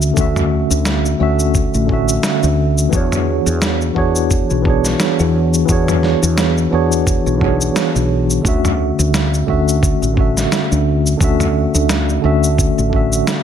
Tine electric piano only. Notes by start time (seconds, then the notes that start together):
Already playing: D3 A3 C#4 F#4 E5
0.13 D3 A3 C#4
0.19 F#4 E5
1.19 D3 A3 C#4 F#4 E5
1.86 D3 A3 C#4
1.92 F#4 E5
2.89 E3 B3 D4
2.93 F#4 G#4 C#5
3.94 E3 B3 D4 F#4 G#4 C#5
4.62 E3 B3 D4
4.67 F#4 G#4 C#5
5.65 E3 B3 D4
5.70 F#4 G#4 C#5
6.71 E3 B3 D4 F#4 G#4 C#5
7.38 E3 B3 D4
7.43 F#4 G#4 C#5
8.41 D3 A3 C#4
8.47 F#4 E5
9.46 D3 A3 C#4 F#4 E5
10.13 D3 A3 C#4
10.19 F#4 E5
11.17 D3 A3 C#4
11.22 F#4 E5
12.22 D3 A3 C#4 F#4 E5
12.89 D3 A3 C#4
12.94 F#4 E5